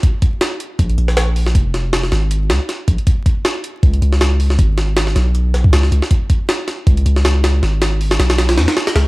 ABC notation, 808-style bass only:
X:1
M:4/4
L:1/8
Q:"Swing 16ths" 1/4=158
K:Db
V:1 name="808-style bass" clef=bass
z4 B,,, B,,,3 | F,,,3 A,,,2 D,, z B,,, | z4 D,, D,,3 | A,,,3 _C,,3 D,, D,, |
z4 D,, D,,3 | A,,,3 _C,,2 _F,, z D,, |]